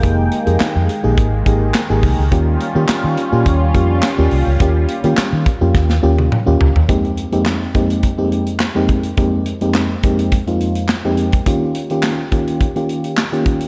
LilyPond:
<<
  \new Staff \with { instrumentName = "FM electric piano" } { \time 4/4 \key f \minor \tempo 4 = 105 <bes ees' g' aes'>8 r16 <bes ees' g' aes'>8. r16 <bes ees' g' aes'>8 r16 <bes ees' g' aes'>8 r16 <bes ees' g' aes'>8 r16 | <bes des' f' g'>8 r16 <bes des' f' g'>8. r16 <bes des' f' g'>8 r16 <bes des' f' g'>8 r16 <bes des' f' g'>8 r16 | <bes des' f' g'>8 r16 <bes des' f' g'>8. r16 <bes des' f' g'>8 r16 <bes des' f' g'>8 r16 <bes des' f' g'>8 r16 | <f, aes bes c' ees' g'>8 r16 <f, aes bes c' ees' g'>8 r16 <f, aes bes c' ees' g'>8 r16 <f, g aes bes c' ees' g'>8. r16 <f, aes bes c' ees' g'>8 r16 |
<f, aes bes c' ees' g'>8 r16 <f, aes bes c' ees' g'>8 r16 <f, aes bes c' ees' g'>8 r16 <f, aes bes c' ees' f'>8. r16 <f, aes bes c' ees' g'>8 r16 | <ees bes des' f' g'>8 r16 <ees bes des' f' g'>8 r16 <ees bes des' f' g'>8 r16 <ees bes des' f' g'>8. r16 <ees bes des' f' g'>8 r16 | }
  \new Staff \with { instrumentName = "Analog synth pad" } { \time 4/4 \key f \minor << { <aes bes g''>1 | <g des' f'>1~ | <g des' f'>1 | r1 |
r1 | r1 | } \\ { ees1~ | ees1~ | ees1 | r1 |
r1 | r1 | } >> }
  \new Staff \with { instrumentName = "Fingered electric bass" } { \clef bass \time 4/4 \key f \minor f,,8 r16 f,16 r16 f,16 r16 bes,,16 aes,,8 aes,,8 r16 aes,,16 c,16 des,16 | ees,8 r16 ees16 r16 ees16 r16 bes,16 ees,8 f,8 r16 ees,16 c,16 des,16 | ees,8 r16 ees16 r16 ees16 r16 f,16 ees,8 ees,8 r16 ees,16 des,16 ees,16 | r1 |
r1 | r1 | }
  \new DrumStaff \with { instrumentName = "Drums" } \drummode { \time 4/4 <hh bd>8 hh16 hh16 <hc hh sn>8 hh8 <hh bd>8 <hh bd>8 <hc hh sn>8 <hho bd>8 | <hh bd>8 hh8 <hc hh sn>8 hh8 <hh bd>8 <hh bd>8 <hc hh sn>8 hho8 | <hh bd>8 hh16 hh16 <hc hh sn>8 <hh bd>8 <bd sn>16 sn8 tommh16 toml8 tomfh16 tomfh16 | <hh bd>16 hh16 hh16 hh16 <hc sn>8 <hh bd>16 hh16 <hh bd>8 hh16 hh16 <hc sn>8 <hh bd>16 hh16 |
<hh bd>8 hh16 hh16 <hc sn>8 <hh bd>16 hh16 <hh bd>16 hh16 hh16 hh16 <hc sn>8 hh16 <hh bd>16 | <hh bd>8 hh16 hh16 <hc sn>8 <hh bd>16 hh16 <hh bd>16 hh16 hh16 hh16 <hc sn>16 hh16 <hh bd>16 hh16 | }
>>